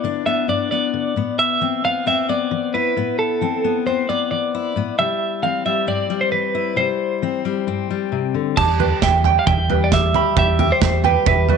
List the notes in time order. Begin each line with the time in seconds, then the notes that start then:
Already playing: B3 E4 D5
0.04 D3 D4
0.26 B3 E5
0.48 G2 D4 D5
0.71 B3 D5
0.94 D3
1.16 A2 B3
1.39 E5
1.61 E3 C4
1.85 B3 F5
2.06 E2 C4 E5
2.29 B3 D5
2.51 E3
2.74 E4 B4
2.97 A2 B3
3.19 A4
3.41 E3 C4
3.64 B3
3.86 E2 C4 C5
4.09 B3 D5
4.31 E3 D5
4.55 E4
4.76 A2 B3
4.98 C3 G3 E5
5.43 E3 C4 F5
5.66 G3 E5
5.87 G2 C4 D5
6.10 G3
6.21 C5
6.32 E3 B4
6.55 E4
6.76 C3 G3 C5
7.22 E3 C4
7.45 G3
7.67 G2 C4
7.90 G3
8.12 C3
8.34 D3
8.57 E2 G3 G4 A5, kick, floor tom, crash
8.80 G4 B4, floor tom
9.02 E2 E3 E5 G5, kick, snare, floor tom
9.24 G5, floor tom
9.39 F5
9.47 E2 B2 E5 G5, kick, floor tom
9.70 G3 B4, floor tom
9.84 D5
9.92 E3 G4 E5, kick, snare, floor tom
10.14 G4 B5, floor tom
10.36 E2 G3 G4 E5, kick, floor tom
10.59 G4, floor tom
10.72 C5
10.81 E2 E3 E5, kick, snare, floor tom
11.04 G4 B4 G5, floor tom
11.26 E2 B2 B4 E5, kick, floor tom
11.49 G3 B4, floor tom